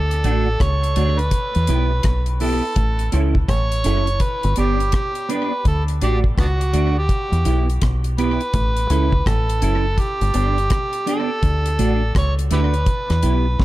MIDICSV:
0, 0, Header, 1, 5, 480
1, 0, Start_track
1, 0, Tempo, 722022
1, 1838, Time_signature, 4, 2, 24, 8
1, 9074, End_track
2, 0, Start_track
2, 0, Title_t, "Harmonica"
2, 0, Program_c, 0, 22
2, 0, Note_on_c, 0, 69, 102
2, 406, Note_on_c, 0, 73, 111
2, 416, Note_off_c, 0, 69, 0
2, 794, Note_on_c, 0, 71, 97
2, 804, Note_off_c, 0, 73, 0
2, 1511, Note_off_c, 0, 71, 0
2, 1605, Note_on_c, 0, 69, 97
2, 2054, Note_off_c, 0, 69, 0
2, 2324, Note_on_c, 0, 73, 111
2, 2807, Note_on_c, 0, 71, 98
2, 2817, Note_off_c, 0, 73, 0
2, 3042, Note_off_c, 0, 71, 0
2, 3050, Note_on_c, 0, 67, 84
2, 3267, Note_off_c, 0, 67, 0
2, 3291, Note_on_c, 0, 67, 94
2, 3531, Note_on_c, 0, 71, 100
2, 3541, Note_off_c, 0, 67, 0
2, 3763, Note_off_c, 0, 71, 0
2, 3774, Note_on_c, 0, 69, 91
2, 3878, Note_off_c, 0, 69, 0
2, 4010, Note_on_c, 0, 67, 88
2, 4115, Note_off_c, 0, 67, 0
2, 4249, Note_on_c, 0, 59, 58
2, 4249, Note_on_c, 0, 62, 58
2, 4249, Note_on_c, 0, 66, 83
2, 4301, Note_off_c, 0, 62, 0
2, 4305, Note_off_c, 0, 59, 0
2, 4638, Note_on_c, 0, 67, 71
2, 4648, Note_off_c, 0, 66, 0
2, 5112, Note_off_c, 0, 67, 0
2, 5445, Note_on_c, 0, 71, 106
2, 6165, Note_on_c, 0, 69, 87
2, 6175, Note_off_c, 0, 71, 0
2, 6648, Note_on_c, 0, 67, 93
2, 6658, Note_off_c, 0, 69, 0
2, 7362, Note_off_c, 0, 67, 0
2, 7371, Note_on_c, 0, 69, 113
2, 8057, Note_off_c, 0, 69, 0
2, 8094, Note_on_c, 0, 73, 101
2, 8198, Note_off_c, 0, 73, 0
2, 8328, Note_on_c, 0, 64, 69
2, 8328, Note_on_c, 0, 67, 69
2, 8328, Note_on_c, 0, 71, 99
2, 8369, Note_off_c, 0, 67, 0
2, 8380, Note_off_c, 0, 64, 0
2, 9074, Note_off_c, 0, 71, 0
2, 9074, End_track
3, 0, Start_track
3, 0, Title_t, "Clean electric guitar"
3, 0, Program_c, 1, 27
3, 160, Note_on_c, 1, 57, 89
3, 163, Note_on_c, 1, 62, 86
3, 167, Note_on_c, 1, 66, 102
3, 305, Note_off_c, 1, 57, 0
3, 307, Note_off_c, 1, 62, 0
3, 309, Note_off_c, 1, 66, 0
3, 638, Note_on_c, 1, 57, 77
3, 642, Note_on_c, 1, 62, 89
3, 644, Note_on_c, 1, 66, 87
3, 784, Note_off_c, 1, 57, 0
3, 786, Note_off_c, 1, 62, 0
3, 787, Note_off_c, 1, 66, 0
3, 1117, Note_on_c, 1, 59, 72
3, 1120, Note_on_c, 1, 64, 82
3, 1123, Note_on_c, 1, 67, 85
3, 1263, Note_off_c, 1, 59, 0
3, 1265, Note_off_c, 1, 64, 0
3, 1267, Note_off_c, 1, 67, 0
3, 1597, Note_on_c, 1, 59, 79
3, 1602, Note_on_c, 1, 64, 88
3, 1603, Note_on_c, 1, 67, 96
3, 1743, Note_off_c, 1, 59, 0
3, 1746, Note_off_c, 1, 64, 0
3, 1746, Note_off_c, 1, 67, 0
3, 2074, Note_on_c, 1, 61, 78
3, 2080, Note_on_c, 1, 64, 85
3, 2083, Note_on_c, 1, 69, 98
3, 2222, Note_off_c, 1, 61, 0
3, 2225, Note_off_c, 1, 64, 0
3, 2226, Note_off_c, 1, 69, 0
3, 2555, Note_on_c, 1, 61, 75
3, 2560, Note_on_c, 1, 64, 83
3, 2561, Note_on_c, 1, 69, 99
3, 2702, Note_off_c, 1, 61, 0
3, 2705, Note_off_c, 1, 64, 0
3, 2705, Note_off_c, 1, 69, 0
3, 3037, Note_on_c, 1, 59, 73
3, 3040, Note_on_c, 1, 62, 71
3, 3041, Note_on_c, 1, 67, 85
3, 3183, Note_off_c, 1, 59, 0
3, 3185, Note_off_c, 1, 62, 0
3, 3185, Note_off_c, 1, 67, 0
3, 3514, Note_on_c, 1, 59, 91
3, 3520, Note_on_c, 1, 62, 98
3, 3523, Note_on_c, 1, 67, 104
3, 3662, Note_off_c, 1, 59, 0
3, 3664, Note_off_c, 1, 62, 0
3, 3666, Note_off_c, 1, 67, 0
3, 3999, Note_on_c, 1, 57, 77
3, 4002, Note_on_c, 1, 62, 86
3, 4005, Note_on_c, 1, 66, 100
3, 4144, Note_off_c, 1, 57, 0
3, 4145, Note_off_c, 1, 62, 0
3, 4147, Note_off_c, 1, 66, 0
3, 4473, Note_on_c, 1, 57, 82
3, 4476, Note_on_c, 1, 62, 89
3, 4479, Note_on_c, 1, 66, 81
3, 4621, Note_off_c, 1, 57, 0
3, 4622, Note_off_c, 1, 62, 0
3, 4624, Note_off_c, 1, 66, 0
3, 4951, Note_on_c, 1, 59, 65
3, 4957, Note_on_c, 1, 64, 80
3, 4960, Note_on_c, 1, 67, 82
3, 5100, Note_off_c, 1, 59, 0
3, 5103, Note_off_c, 1, 64, 0
3, 5104, Note_off_c, 1, 67, 0
3, 5437, Note_on_c, 1, 59, 81
3, 5441, Note_on_c, 1, 64, 90
3, 5444, Note_on_c, 1, 67, 92
3, 5583, Note_off_c, 1, 59, 0
3, 5585, Note_off_c, 1, 64, 0
3, 5587, Note_off_c, 1, 67, 0
3, 5917, Note_on_c, 1, 61, 80
3, 5921, Note_on_c, 1, 64, 97
3, 5923, Note_on_c, 1, 69, 88
3, 6063, Note_off_c, 1, 61, 0
3, 6065, Note_off_c, 1, 64, 0
3, 6066, Note_off_c, 1, 69, 0
3, 6395, Note_on_c, 1, 61, 77
3, 6400, Note_on_c, 1, 64, 86
3, 6404, Note_on_c, 1, 69, 85
3, 6542, Note_off_c, 1, 61, 0
3, 6544, Note_off_c, 1, 64, 0
3, 6546, Note_off_c, 1, 69, 0
3, 6872, Note_on_c, 1, 59, 75
3, 6874, Note_on_c, 1, 62, 76
3, 6878, Note_on_c, 1, 67, 75
3, 7021, Note_off_c, 1, 59, 0
3, 7022, Note_off_c, 1, 62, 0
3, 7024, Note_off_c, 1, 67, 0
3, 7353, Note_on_c, 1, 59, 88
3, 7357, Note_on_c, 1, 62, 100
3, 7359, Note_on_c, 1, 67, 96
3, 7501, Note_off_c, 1, 59, 0
3, 7503, Note_off_c, 1, 62, 0
3, 7504, Note_off_c, 1, 67, 0
3, 7835, Note_on_c, 1, 57, 89
3, 7839, Note_on_c, 1, 62, 99
3, 7842, Note_on_c, 1, 66, 93
3, 7982, Note_off_c, 1, 57, 0
3, 7984, Note_off_c, 1, 62, 0
3, 7986, Note_off_c, 1, 66, 0
3, 8314, Note_on_c, 1, 57, 78
3, 8317, Note_on_c, 1, 62, 87
3, 8319, Note_on_c, 1, 66, 80
3, 8461, Note_off_c, 1, 57, 0
3, 8463, Note_off_c, 1, 62, 0
3, 8464, Note_off_c, 1, 66, 0
3, 8793, Note_on_c, 1, 59, 67
3, 8795, Note_on_c, 1, 64, 81
3, 8797, Note_on_c, 1, 67, 76
3, 8941, Note_off_c, 1, 59, 0
3, 8942, Note_off_c, 1, 64, 0
3, 8943, Note_off_c, 1, 67, 0
3, 9074, End_track
4, 0, Start_track
4, 0, Title_t, "Fingered electric bass"
4, 0, Program_c, 2, 33
4, 0, Note_on_c, 2, 38, 108
4, 150, Note_off_c, 2, 38, 0
4, 159, Note_on_c, 2, 33, 77
4, 387, Note_off_c, 2, 33, 0
4, 401, Note_on_c, 2, 37, 99
4, 627, Note_off_c, 2, 37, 0
4, 642, Note_on_c, 2, 38, 82
4, 868, Note_off_c, 2, 38, 0
4, 1036, Note_on_c, 2, 40, 87
4, 1117, Note_off_c, 2, 40, 0
4, 1124, Note_on_c, 2, 35, 88
4, 1349, Note_off_c, 2, 35, 0
4, 1359, Note_on_c, 2, 35, 81
4, 1729, Note_off_c, 2, 35, 0
4, 1838, Note_on_c, 2, 33, 102
4, 2066, Note_off_c, 2, 33, 0
4, 2084, Note_on_c, 2, 37, 78
4, 2308, Note_off_c, 2, 37, 0
4, 2318, Note_on_c, 2, 33, 92
4, 2545, Note_off_c, 2, 33, 0
4, 2565, Note_on_c, 2, 30, 85
4, 2789, Note_off_c, 2, 30, 0
4, 2953, Note_on_c, 2, 31, 104
4, 3035, Note_off_c, 2, 31, 0
4, 3043, Note_on_c, 2, 31, 84
4, 3268, Note_off_c, 2, 31, 0
4, 3759, Note_on_c, 2, 38, 102
4, 3986, Note_off_c, 2, 38, 0
4, 4001, Note_on_c, 2, 33, 79
4, 4227, Note_off_c, 2, 33, 0
4, 4240, Note_on_c, 2, 37, 96
4, 4466, Note_off_c, 2, 37, 0
4, 4479, Note_on_c, 2, 38, 87
4, 4705, Note_off_c, 2, 38, 0
4, 4867, Note_on_c, 2, 40, 95
4, 4952, Note_off_c, 2, 40, 0
4, 4959, Note_on_c, 2, 35, 88
4, 5186, Note_off_c, 2, 35, 0
4, 5200, Note_on_c, 2, 35, 88
4, 5569, Note_off_c, 2, 35, 0
4, 5680, Note_on_c, 2, 33, 101
4, 5906, Note_off_c, 2, 33, 0
4, 5917, Note_on_c, 2, 37, 88
4, 6144, Note_off_c, 2, 37, 0
4, 6158, Note_on_c, 2, 33, 98
4, 6385, Note_off_c, 2, 33, 0
4, 6399, Note_on_c, 2, 30, 86
4, 6626, Note_off_c, 2, 30, 0
4, 6790, Note_on_c, 2, 31, 103
4, 6873, Note_off_c, 2, 31, 0
4, 6880, Note_on_c, 2, 31, 86
4, 7106, Note_off_c, 2, 31, 0
4, 7600, Note_on_c, 2, 38, 102
4, 7826, Note_off_c, 2, 38, 0
4, 7839, Note_on_c, 2, 33, 81
4, 8066, Note_off_c, 2, 33, 0
4, 8079, Note_on_c, 2, 37, 92
4, 8306, Note_off_c, 2, 37, 0
4, 8317, Note_on_c, 2, 38, 84
4, 8545, Note_off_c, 2, 38, 0
4, 8710, Note_on_c, 2, 40, 92
4, 8793, Note_off_c, 2, 40, 0
4, 8799, Note_on_c, 2, 35, 90
4, 9026, Note_off_c, 2, 35, 0
4, 9039, Note_on_c, 2, 35, 85
4, 9074, Note_off_c, 2, 35, 0
4, 9074, End_track
5, 0, Start_track
5, 0, Title_t, "Drums"
5, 74, Note_on_c, 9, 42, 53
5, 140, Note_off_c, 9, 42, 0
5, 161, Note_on_c, 9, 42, 71
5, 227, Note_off_c, 9, 42, 0
5, 400, Note_on_c, 9, 36, 109
5, 404, Note_on_c, 9, 42, 89
5, 405, Note_on_c, 9, 37, 109
5, 467, Note_off_c, 9, 36, 0
5, 470, Note_off_c, 9, 42, 0
5, 471, Note_off_c, 9, 37, 0
5, 555, Note_on_c, 9, 42, 52
5, 622, Note_off_c, 9, 42, 0
5, 637, Note_on_c, 9, 42, 75
5, 704, Note_off_c, 9, 42, 0
5, 790, Note_on_c, 9, 42, 34
5, 857, Note_off_c, 9, 42, 0
5, 873, Note_on_c, 9, 42, 95
5, 874, Note_on_c, 9, 36, 92
5, 940, Note_off_c, 9, 42, 0
5, 941, Note_off_c, 9, 36, 0
5, 1028, Note_on_c, 9, 42, 46
5, 1095, Note_off_c, 9, 42, 0
5, 1112, Note_on_c, 9, 42, 69
5, 1179, Note_off_c, 9, 42, 0
5, 1352, Note_on_c, 9, 42, 97
5, 1358, Note_on_c, 9, 36, 119
5, 1362, Note_on_c, 9, 37, 112
5, 1418, Note_off_c, 9, 42, 0
5, 1425, Note_off_c, 9, 36, 0
5, 1429, Note_off_c, 9, 37, 0
5, 1503, Note_on_c, 9, 42, 47
5, 1569, Note_off_c, 9, 42, 0
5, 1597, Note_on_c, 9, 46, 66
5, 1663, Note_off_c, 9, 46, 0
5, 1834, Note_on_c, 9, 42, 76
5, 1837, Note_on_c, 9, 36, 101
5, 1901, Note_off_c, 9, 42, 0
5, 1904, Note_off_c, 9, 36, 0
5, 1987, Note_on_c, 9, 42, 48
5, 2054, Note_off_c, 9, 42, 0
5, 2076, Note_on_c, 9, 42, 74
5, 2142, Note_off_c, 9, 42, 0
5, 2227, Note_on_c, 9, 36, 79
5, 2293, Note_off_c, 9, 36, 0
5, 2317, Note_on_c, 9, 36, 108
5, 2318, Note_on_c, 9, 42, 88
5, 2319, Note_on_c, 9, 37, 103
5, 2383, Note_off_c, 9, 36, 0
5, 2385, Note_off_c, 9, 42, 0
5, 2386, Note_off_c, 9, 37, 0
5, 2471, Note_on_c, 9, 42, 50
5, 2538, Note_off_c, 9, 42, 0
5, 2554, Note_on_c, 9, 42, 70
5, 2620, Note_off_c, 9, 42, 0
5, 2707, Note_on_c, 9, 42, 37
5, 2773, Note_off_c, 9, 42, 0
5, 2791, Note_on_c, 9, 42, 83
5, 2793, Note_on_c, 9, 36, 98
5, 2858, Note_off_c, 9, 42, 0
5, 2860, Note_off_c, 9, 36, 0
5, 2947, Note_on_c, 9, 42, 47
5, 3013, Note_off_c, 9, 42, 0
5, 3030, Note_on_c, 9, 42, 66
5, 3096, Note_off_c, 9, 42, 0
5, 3193, Note_on_c, 9, 42, 39
5, 3259, Note_off_c, 9, 42, 0
5, 3272, Note_on_c, 9, 42, 93
5, 3278, Note_on_c, 9, 36, 115
5, 3283, Note_on_c, 9, 37, 111
5, 3339, Note_off_c, 9, 42, 0
5, 3345, Note_off_c, 9, 36, 0
5, 3349, Note_off_c, 9, 37, 0
5, 3425, Note_on_c, 9, 42, 51
5, 3492, Note_off_c, 9, 42, 0
5, 3520, Note_on_c, 9, 42, 68
5, 3587, Note_off_c, 9, 42, 0
5, 3758, Note_on_c, 9, 42, 78
5, 3759, Note_on_c, 9, 36, 105
5, 3824, Note_off_c, 9, 42, 0
5, 3825, Note_off_c, 9, 36, 0
5, 3911, Note_on_c, 9, 42, 49
5, 3977, Note_off_c, 9, 42, 0
5, 3999, Note_on_c, 9, 42, 73
5, 4065, Note_off_c, 9, 42, 0
5, 4148, Note_on_c, 9, 36, 81
5, 4215, Note_off_c, 9, 36, 0
5, 4239, Note_on_c, 9, 36, 112
5, 4244, Note_on_c, 9, 42, 90
5, 4245, Note_on_c, 9, 37, 102
5, 4305, Note_off_c, 9, 36, 0
5, 4311, Note_off_c, 9, 42, 0
5, 4312, Note_off_c, 9, 37, 0
5, 4394, Note_on_c, 9, 42, 55
5, 4461, Note_off_c, 9, 42, 0
5, 4478, Note_on_c, 9, 42, 75
5, 4544, Note_off_c, 9, 42, 0
5, 4714, Note_on_c, 9, 36, 101
5, 4714, Note_on_c, 9, 42, 82
5, 4780, Note_off_c, 9, 36, 0
5, 4781, Note_off_c, 9, 42, 0
5, 4871, Note_on_c, 9, 42, 44
5, 4938, Note_off_c, 9, 42, 0
5, 4954, Note_on_c, 9, 42, 67
5, 5021, Note_off_c, 9, 42, 0
5, 5116, Note_on_c, 9, 42, 37
5, 5183, Note_off_c, 9, 42, 0
5, 5196, Note_on_c, 9, 42, 93
5, 5199, Note_on_c, 9, 36, 117
5, 5206, Note_on_c, 9, 37, 115
5, 5262, Note_off_c, 9, 42, 0
5, 5265, Note_off_c, 9, 36, 0
5, 5273, Note_off_c, 9, 37, 0
5, 5346, Note_on_c, 9, 42, 46
5, 5413, Note_off_c, 9, 42, 0
5, 5441, Note_on_c, 9, 42, 73
5, 5507, Note_off_c, 9, 42, 0
5, 5588, Note_on_c, 9, 42, 35
5, 5654, Note_off_c, 9, 42, 0
5, 5675, Note_on_c, 9, 42, 76
5, 5677, Note_on_c, 9, 36, 107
5, 5741, Note_off_c, 9, 42, 0
5, 5743, Note_off_c, 9, 36, 0
5, 5828, Note_on_c, 9, 42, 52
5, 5894, Note_off_c, 9, 42, 0
5, 5916, Note_on_c, 9, 42, 71
5, 5983, Note_off_c, 9, 42, 0
5, 6066, Note_on_c, 9, 36, 84
5, 6133, Note_off_c, 9, 36, 0
5, 6157, Note_on_c, 9, 36, 107
5, 6162, Note_on_c, 9, 42, 92
5, 6163, Note_on_c, 9, 37, 108
5, 6224, Note_off_c, 9, 36, 0
5, 6228, Note_off_c, 9, 42, 0
5, 6229, Note_off_c, 9, 37, 0
5, 6312, Note_on_c, 9, 42, 52
5, 6379, Note_off_c, 9, 42, 0
5, 6395, Note_on_c, 9, 42, 67
5, 6461, Note_off_c, 9, 42, 0
5, 6632, Note_on_c, 9, 36, 96
5, 6633, Note_on_c, 9, 42, 85
5, 6699, Note_off_c, 9, 36, 0
5, 6699, Note_off_c, 9, 42, 0
5, 6790, Note_on_c, 9, 42, 45
5, 6856, Note_off_c, 9, 42, 0
5, 6873, Note_on_c, 9, 42, 67
5, 6939, Note_off_c, 9, 42, 0
5, 7034, Note_on_c, 9, 42, 36
5, 7100, Note_off_c, 9, 42, 0
5, 7114, Note_on_c, 9, 42, 96
5, 7118, Note_on_c, 9, 36, 127
5, 7124, Note_on_c, 9, 37, 113
5, 7180, Note_off_c, 9, 42, 0
5, 7184, Note_off_c, 9, 36, 0
5, 7191, Note_off_c, 9, 37, 0
5, 7265, Note_on_c, 9, 42, 52
5, 7331, Note_off_c, 9, 42, 0
5, 7360, Note_on_c, 9, 42, 68
5, 7427, Note_off_c, 9, 42, 0
5, 7597, Note_on_c, 9, 36, 104
5, 7597, Note_on_c, 9, 42, 70
5, 7663, Note_off_c, 9, 42, 0
5, 7664, Note_off_c, 9, 36, 0
5, 7749, Note_on_c, 9, 42, 52
5, 7815, Note_off_c, 9, 42, 0
5, 7837, Note_on_c, 9, 42, 67
5, 7904, Note_off_c, 9, 42, 0
5, 8077, Note_on_c, 9, 36, 111
5, 8083, Note_on_c, 9, 42, 88
5, 8084, Note_on_c, 9, 37, 109
5, 8144, Note_off_c, 9, 36, 0
5, 8149, Note_off_c, 9, 42, 0
5, 8150, Note_off_c, 9, 37, 0
5, 8235, Note_on_c, 9, 42, 49
5, 8301, Note_off_c, 9, 42, 0
5, 8314, Note_on_c, 9, 42, 69
5, 8381, Note_off_c, 9, 42, 0
5, 8467, Note_on_c, 9, 42, 35
5, 8534, Note_off_c, 9, 42, 0
5, 8552, Note_on_c, 9, 42, 84
5, 8553, Note_on_c, 9, 36, 105
5, 8619, Note_off_c, 9, 36, 0
5, 8619, Note_off_c, 9, 42, 0
5, 8708, Note_on_c, 9, 42, 47
5, 8712, Note_on_c, 9, 37, 66
5, 8774, Note_off_c, 9, 42, 0
5, 8779, Note_off_c, 9, 37, 0
5, 8792, Note_on_c, 9, 42, 69
5, 8859, Note_off_c, 9, 42, 0
5, 9038, Note_on_c, 9, 36, 122
5, 9041, Note_on_c, 9, 38, 59
5, 9074, Note_off_c, 9, 36, 0
5, 9074, Note_off_c, 9, 38, 0
5, 9074, End_track
0, 0, End_of_file